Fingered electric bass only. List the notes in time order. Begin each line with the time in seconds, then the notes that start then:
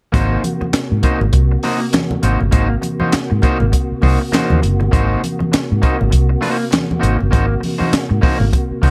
0.14 G#1
0.62 muted fingered electric bass stroke
0.73 muted fingered electric bass stroke
0.92 G#2
1.21 G#1
1.34 C2
2.23 G#1
2.41 G1
2.53 G#1
3.01 muted fingered electric bass stroke
3.14 muted fingered electric bass stroke
3.32 G#2
3.62 G#1
3.92 muted fingered electric bass stroke
4.03 C2
4.52 D#2
4.64 F#1
4.82 G1
4.93 G#1
5.42 muted fingered electric bass stroke
5.54 muted fingered electric bass stroke
5.72 G#2
6.01 G#1
6.13 C2
7.03 G#1
7.21 G1
7.33 G#1
7.81 muted fingered electric bass stroke
7.93 muted fingered electric bass stroke
8.11 G#2
8.41 G#1
8.71 muted fingered electric bass stroke
8.83 C2